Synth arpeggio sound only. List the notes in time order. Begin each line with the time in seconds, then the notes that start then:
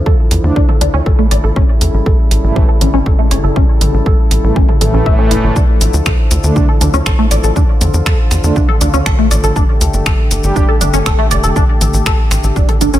0.06 A4
0.56 D4
0.69 A4
0.81 D4
0.94 C#4
1.06 A4
1.19 A3
1.31 D5
1.44 A4
1.56 C#4
2.06 A4
2.56 C#4
2.69 A4
2.81 C#4
2.94 C#4
3.06 A4
3.19 A3
3.31 C#5
3.44 A4
3.56 C#4
4.06 A4
4.56 C#4
4.69 A4
4.81 A4
4.94 C#4
5.06 E5
5.19 C#4
5.31 E4
5.56 D4
6.06 A4
6.56 D4
6.69 A4
6.81 D4
6.94 C#4
7.06 A4
7.19 A3
7.31 D5
7.44 A4
7.56 D4
8.06 A4
8.56 D4
8.69 A4
8.81 D4
8.94 C#4
9.06 A4
9.19 A3
9.31 D5
9.44 A4
9.56 D4
10.06 A4
10.56 D4
10.69 A4
10.81 D4
10.94 C#4
11.06 A4
11.19 A3
11.31 D5
11.44 A4
11.56 D4
12.06 A4
12.56 D4
12.69 A4
12.81 D4
12.94 C#4